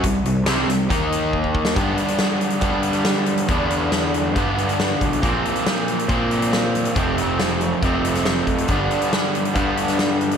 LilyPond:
<<
  \new Staff \with { instrumentName = "Overdriven electric guitar" } { \clef bass \time 4/4 \key g \mixolydian \tempo 4 = 139 <c g>8 <c g>8 <c g c'>8 <c g>8 <ees bes ees'>2 | <g, d g b d'>2 <g, d g b d'>2 | <g, d g b d'>2 <g, d g b d'>2 | <bes, f bes c'>2 <bes, f bes c'>2 |
<f, c f a c'>2 <f, c f a c'>2 | <g, d g b d'>2 <g, d g b d'>2 | }
  \new Staff \with { instrumentName = "Picked electric bass" } { \clef bass \time 4/4 \key g \mixolydian c,8 c,8 c,8 c,8 ees,2 | g,8 r4. g2 | e,2 g,4. b,,8 | bes,,8 r4. bes,2 |
f,,2 f,,4. f,8 | g,,8 r4. g,2 | }
  \new DrumStaff \with { instrumentName = "Drums" } \drummode { \time 4/4 <hh bd>8 hh8 <hh sn>8 <hh sn>8 <hh bd>8 hh8 bd16 bd16 bd16 sn16 | <hh bd>8 hh16 hh16 <hh sn>8 hh16 hh16 <hh bd>8 hh16 hh16 <hh sn>8 hh16 hh16 | <hh bd>8 hh8 <hh sn>8 hh8 <hh bd>8 hh16 hh16 <hh sn>8 <hh bd>16 hh16 | <hh bd>8 hh16 hh16 <hh sn>8 hh16 hh16 <hh bd>8 hh16 hh16 <hh sn>8 hh16 hh16 |
<hh bd>8 hh8 <hh sn>8 hh8 <hh bd>8 hh16 <hh sn>16 <hh sn>8 <hh bd>16 hh16 | <hh bd>8 hh16 hh16 <hh sn>8 hh16 hh16 <hh bd>8 hh16 <hh sn>16 <hh sn>8 hh16 hh16 | }
>>